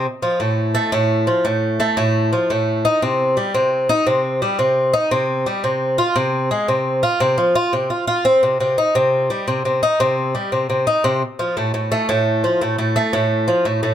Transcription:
X:1
M:4/4
L:1/16
Q:1/4=86
K:Fdor
V:1 name="Twelve-string acoustic guitar" clef=bass
z F, =A,,2 =A, A,,2 F, A,,2 A, A,,2 F, A,,2 | E C,2 G, C,2 E C,2 G, C,2 E C,2 G, | C,2 F C,2 A, C,2 F C, F, F C, F F C | C, C, E C,2 G, C, C, E C,2 G, C, C, E C, |
z F, =A,, A,, =A, A,,2 F, A,, A,, A, A,,2 F, A,, A,, |]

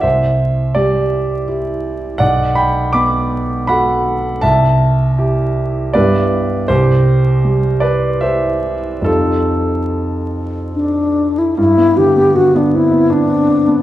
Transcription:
X:1
M:3/4
L:1/16
Q:1/4=80
K:G
V:1 name="Grand piano"
[ce]4 [Gd]4 z4 | [df]2 [gb]2 [bd']4 [fb]4 | [ea]8 [Bd]4 | [Gc]6 [Bd]2 [ce]4 |
[=FA]8 z4 | z12 |]
V:2 name="Grand piano"
C,,4 G,4 [EG]4 | B,,,4 B,4 [FA]4 | C,,4 [EG]4 [G,,G,B,EG]4 | C,,4 G,4 [EG]4 |
[=F,,G,C_E]12 | G,, B, D, B, D, B, C B, D C D B, |]
V:3 name="Alto flute"
z12 | z12 | z12 | z12 |
z8 D3 E | E2 G2 F D E2 D4 |]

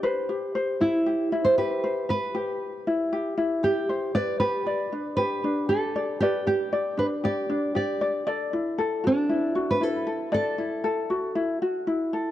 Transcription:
X:1
M:4/4
L:1/16
Q:1/4=117
K:G
V:1 name="Nylon-string guitar"
z6 E4- E c B4 | B12 G4 | d2 B6 B4 A4 | G2 G4 B2 d4 d3 z |
z6 D4- D B A4 | A12- A2 z2 |]
V:2 name="Ukulele"
[Bc]2 G2 c2 E2 G2 E2 G2 c2 | B2 G4 E2 G2 E2 G2 c2 | [Bd]2 G2 d2 D2 G2 D2 G2 d2 | [Bd]2 G2 d2 D2 G2 D2 G2 d2 |
[Ad]2 E2 A2 F2 E2 F2 E2 A2 | [Ad]2 E2 A2 F2 E2 F2 E2 A2 |]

